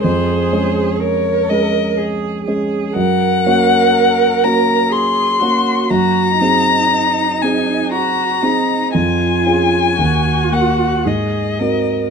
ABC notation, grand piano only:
X:1
M:3/4
L:1/8
Q:1/4=60
K:Db
V:1 name="Grand piano"
F,, [A,DA]2 [A,DA]2 [A,DA] | G,, [B,DG]2 [B,DG]2 [B,DG] | G,, [CEA]2 [CEA]2 [CEA] | F,, [DFA] E,, [B,GB] A,, [CGB] |]